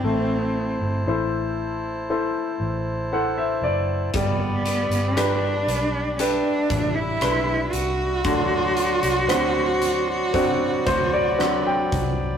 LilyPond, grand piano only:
\new Staff \with { instrumentName = "Grand piano" } { \time 4/4 \key g \major \tempo 4 = 58 << { r2. fis''16 e''16 d''8 | r1 | r2 r8 c''16 d''16 fis''16 g''8. | } \\ { a4 <e' a' c''>4 <e' a' c''>4 <e' a' c''>4 | g4 <d' g' b'>4 <d' g' b'>4 <d' b'>4 | d4 <c' d' fis'>4 <c' d' fis'>4 <fis c' d'>4 | } >> }